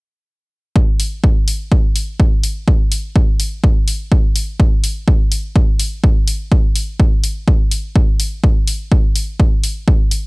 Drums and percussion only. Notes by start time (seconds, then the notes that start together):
0.76 kick
1.00 open hi-hat
1.24 kick
1.48 open hi-hat
1.72 kick
1.96 open hi-hat
2.20 kick
2.43 open hi-hat
2.68 kick
2.92 open hi-hat
3.16 kick
3.40 open hi-hat
3.64 kick
3.88 open hi-hat
4.12 kick
4.36 open hi-hat
4.60 kick
4.84 open hi-hat
5.08 kick
5.32 open hi-hat
5.56 kick
5.80 open hi-hat
6.04 kick
6.28 open hi-hat
6.52 kick
6.76 open hi-hat
7.00 kick
7.24 open hi-hat
7.48 kick
7.71 open hi-hat
7.96 kick
8.20 open hi-hat
8.44 kick
8.68 open hi-hat
8.92 kick
9.16 open hi-hat
9.40 kick
9.64 open hi-hat
9.88 kick
10.11 open hi-hat